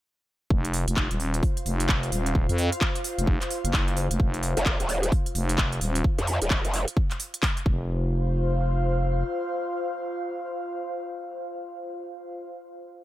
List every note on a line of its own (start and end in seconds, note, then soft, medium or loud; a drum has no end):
0.50 0.85 F1 medium
0.50 6.04 F4 medium
0.50 kick loud
0.65 closed hi-hat medium
0.74 open hi-hat loud
0.88 1.09 F1 loud
0.88 closed hi-hat medium
0.97 kick loud
0.97 clap loud
1.04 6.04 C5 medium
1.11 1.41 D#1 loud
1.11 closed hi-hat medium
1.20 open hi-hat loud
1.34 closed hi-hat medium
1.43 6.04 F5 medium
1.43 kick loud
1.43 open hi-hat medium
1.57 closed hi-hat soft
1.66 2.11 F1 medium
1.66 open hi-hat loud
1.80 closed hi-hat medium
1.89 kick loud
1.89 clap loud
2.03 closed hi-hat soft
2.12 2.47 D#1 loud
2.12 open hi-hat loud
2.26 closed hi-hat medium
2.35 kick loud
2.49 2.70 F2 loud
2.49 closed hi-hat medium
2.58 open hi-hat loud
2.72 closed hi-hat medium
2.81 kick loud
2.81 clap loud
2.95 closed hi-hat medium
3.04 open hi-hat loud
3.18 3.39 F1 loud
3.18 closed hi-hat medium
3.27 kick loud
3.42 clap soft
3.42 closed hi-hat soft
3.51 open hi-hat loud
3.65 4.08 F#1 loud
3.65 closed hi-hat medium
3.74 kick loud
3.74 clap loud
3.74 open hi-hat medium
3.88 closed hi-hat soft
3.97 open hi-hat loud
4.11 4.18 F1 loud
4.11 closed hi-hat medium
4.20 4.55 F1 medium
4.20 kick loud
4.34 closed hi-hat soft
4.43 open hi-hat loud
4.57 4.78 F1 loud
4.57 closed hi-hat medium
4.66 kick loud
4.66 clap loud
4.80 5.11 D#1 loud
4.80 closed hi-hat medium
4.89 open hi-hat loud
5.03 closed hi-hat medium
5.12 kick loud
5.12 open hi-hat medium
5.26 closed hi-hat soft
5.35 5.80 F1 loud
5.35 open hi-hat loud
5.49 closed hi-hat medium
5.58 kick loud
5.58 clap loud
5.72 closed hi-hat soft
5.81 6.03 D#1 loud
5.81 open hi-hat loud
5.95 closed hi-hat medium
6.04 kick loud
6.18 6.39 F2 loud
6.18 closed hi-hat soft
6.27 open hi-hat loud
6.42 6.62 D#1 loud
6.42 closed hi-hat medium
6.50 kick loud
6.50 clap loud
6.65 6.85 F1 medium
6.65 closed hi-hat soft
6.74 open hi-hat loud
6.88 closed hi-hat medium
6.97 kick loud
7.11 clap soft
7.11 closed hi-hat soft
7.20 open hi-hat loud
7.34 closed hi-hat medium
7.43 kick loud
7.43 clap loud
7.43 open hi-hat medium
7.57 closed hi-hat soft
7.66 9.23 F1 loud
7.66 12.34 F4 medium
7.66 kick loud
7.74 12.34 C5 medium
8.05 12.34 F5 medium